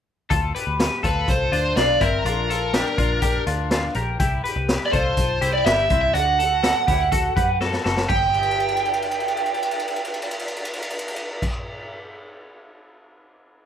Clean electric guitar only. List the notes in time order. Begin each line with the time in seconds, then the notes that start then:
0.30 F4 A4
0.55 G4 B4
1.03 F4 A4
1.52 D4 F4
1.77 D4 F4
2.01 C4 E4
2.26 D4 F4
2.50 F4 A4
2.74 D4 G4
2.98 D4 F4
3.22 D4 G4
3.47 D4 F4
3.72 D4 F4
3.95 G4 A#4
4.20 E4 G4
4.44 G4 B4
4.93 F4 A4
5.41 E4 G4
5.66 E4 G4
5.90 C4 E4
6.14 D4 F#4
6.39 F#4 A4
6.63 F#4 A4
6.87 E4 G4
7.12 F#4 A4
7.36 G4 B4
7.61 F#4 A4
7.84 F#4 A4
8.09 G4